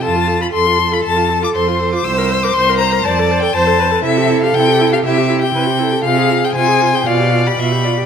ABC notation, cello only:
X:1
M:4/4
L:1/8
Q:1/4=119
K:C
V:1 name="Cello" clef=bass
F,,2 F,,2 F,,2 F,,2 | C,,2 C,,2 F,,2 F,,2 | C,2 C,2 C,2 C,2 | C,2 C,2 B,,2 B,,2 |]